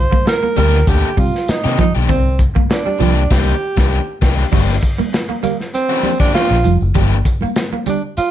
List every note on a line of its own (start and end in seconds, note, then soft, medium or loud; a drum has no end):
0.00 0.27 C5 loud
0.11 0.23 A#3 medium
0.11 kick medium
0.11 high conga medium
0.26 0.55 A#4 loud
0.26 muted clean electric guitar stroke soft
0.26 snare loud
0.26 closed hi-hat medium
0.26 muted conga soft
0.43 0.54 A#3 medium
0.43 high conga medium
0.56 0.82 D2 medium
0.56 0.76 D#3 medium
0.56 0.70 G3 medium
0.56 0.77 A#3 medium
0.56 0.77 D4 medium
0.56 0.77 G4 loud
0.56 0.89 A#4 loud
0.56 closed hi-hat medium
0.56 muted conga soft
0.56 low conga medium
0.74 snare soft
0.87 1.01 D2 loud
0.87 1.07 D#3 medium
0.87 1.08 A#3 medium
0.87 1.08 D4 medium
0.87 1.18 G4 loud
0.87 1.08 A4 loud
0.87 kick medium
0.87 closed hi-hat loud
1.17 1.31 C3 loud
1.17 1.31 G3 medium
1.17 1.51 F4 medium
1.17 kick medium
1.17 open hi-hat medium
1.17 muted conga soft
1.17 high conga medium
1.35 snare soft
1.48 1.79 D#4 loud
1.48 muted fingered electric bass stroke soft
1.48 snare loud
1.48 closed hi-hat medium
1.48 muted conga soft
1.64 1.77 C3 medium
1.64 1.83 D#3 medium
1.64 1.83 A#3 medium
1.64 1.83 D4 medium
1.64 1.82 G4 medium
1.64 snare soft
1.78 1.91 F3 medium
1.78 1.94 D#4 medium
1.78 kick loud
1.78 closed hi-hat medium
1.78 muted conga soft
1.78 high conga medium
1.95 2.10 B1 medium
1.95 2.10 D#3 medium
1.95 2.09 A#3 medium
1.95 2.09 D4 medium
1.95 2.09 G4 medium
2.09 2.47 C2 loud
2.09 2.22 C4 medium
2.09 2.41 C4 medium
2.09 kick loud
2.09 closed hi-hat medium
2.09 muted conga soft
2.09 low conga medium
2.39 muted clean electric guitar stroke soft
2.39 kick medium
2.39 closed hi-hat medium
2.39 muted conga soft
2.55 2.67 A#3 medium
2.55 kick medium
2.55 high conga medium
2.70 3.34 D4 medium
2.70 muted clean electric guitar stroke soft
2.70 snare loud
2.70 closed hi-hat medium
2.70 muted conga soft
2.86 2.98 G3 medium
2.86 high conga soft
2.99 3.25 C2 medium
2.99 3.20 D#3 medium
2.99 3.13 F3 medium
2.99 3.20 A#3 medium
2.99 3.21 D4 medium
2.99 3.21 G4 loud
2.99 closed hi-hat medium
2.99 muted conga soft
2.99 low conga medium
3.31 3.52 C2 loud
3.31 3.52 D#3 loud
3.31 3.52 A#3 loud
3.31 3.53 D4 medium
3.31 4.23 G4 loud
3.31 3.53 G4 medium
3.31 kick medium
3.31 snare loud
3.31 crash medium
3.77 3.98 C2 loud
3.77 3.97 D#3 loud
3.77 3.98 A#3 loud
3.77 3.98 D4 loud
3.77 3.99 G4 medium
3.77 kick loud
3.77 snare loud
4.22 4.43 C2 loud
4.22 4.43 D#3 medium
4.22 4.43 A#3 medium
4.22 4.44 D4 medium
4.22 4.44 G4 loud
4.22 kick loud
4.22 snare loud
4.22 crash medium
4.52 4.78 G1 medium
4.52 4.73 F3 medium
4.52 4.65 G3 medium
4.52 4.73 A#3 medium
4.52 4.74 D4 medium
4.52 4.74 G4 medium
4.52 kick loud
4.52 crash medium
4.52 tambourine soft
4.52 muted conga soft
4.52 low conga medium
4.70 snare soft
4.82 muted clean electric guitar stroke soft
4.82 kick medium
4.82 closed hi-hat medium
4.82 tambourine medium
4.98 5.10 A#3 medium
4.98 muted fingered electric bass stroke soft
4.98 tambourine soft
4.98 high conga medium
5.13 muted clean electric guitar stroke soft
5.13 snare loud
5.13 closed hi-hat medium
5.13 tambourine loud
5.13 muted conga soft
5.29 5.41 A#3 medium
5.29 high conga soft
5.43 5.56 G3 medium
5.43 5.57 A#3 medium
5.43 closed hi-hat medium
5.43 tambourine medium
5.43 muted conga soft
5.43 low conga medium
5.60 snare soft
5.60 tambourine soft
5.73 6.17 C4 loud
5.73 closed hi-hat loud
5.73 tambourine medium
5.73 muted conga soft
5.89 6.10 F3 medium
5.89 6.10 A#3 medium
5.89 6.10 D4 medium
5.89 6.09 G4 medium
5.89 tambourine soft
6.03 6.17 G3 medium
6.03 open hi-hat medium
6.03 tambourine medium
6.03 high conga medium
6.20 6.32 F3 medium
6.20 6.33 A#3 medium
6.20 6.33 D4 loud
6.20 6.34 D4 medium
6.20 6.34 G4 medium
6.20 kick loud
6.20 snare soft
6.33 6.55 F3 medium
6.33 6.55 A#3 medium
6.33 6.55 D4 medium
6.33 6.78 F4 loud
6.33 6.56 G4 loud
6.33 snare loud
6.33 closed hi-hat medium
6.33 tambourine medium
6.33 muted conga soft
6.51 6.62 A#1 medium
6.51 snare soft
6.64 6.78 F1 medium
6.64 6.78 F3 medium
6.64 closed hi-hat medium
6.64 tambourine medium
6.64 muted conga soft
6.64 high conga medium
6.64 low conga medium
6.81 6.93 F#1 medium
6.81 tambourine soft
6.95 7.20 G1 loud
6.95 7.14 F3 medium
6.95 7.08 G3 medium
6.95 7.15 A#3 medium
6.95 7.15 D4 medium
6.95 7.15 G4 medium
6.95 kick loud
6.95 closed hi-hat medium
6.95 tambourine soft
6.95 muted conga soft
6.95 low conga medium
7.11 closed hi-hat medium
7.25 muted clean electric guitar stroke soft
7.25 kick medium
7.25 closed hi-hat medium
7.25 tambourine medium
7.41 7.54 A#3 medium
7.41 muted fingered electric bass stroke soft
7.41 tambourine soft
7.41 high conga medium
7.56 muted clean electric guitar stroke soft
7.56 snare loud
7.56 closed hi-hat medium
7.56 tambourine loud
7.73 7.84 A#3 medium
7.73 high conga soft
7.86 8.00 G3 medium
7.86 8.02 D4 medium
7.86 closed hi-hat medium
7.86 tambourine medium
7.86 muted conga soft
7.86 low conga medium
8.17 8.31 F4 loud
8.17 muted fingered electric bass stroke soft
8.17 closed hi-hat medium
8.17 tambourine medium
8.17 muted conga soft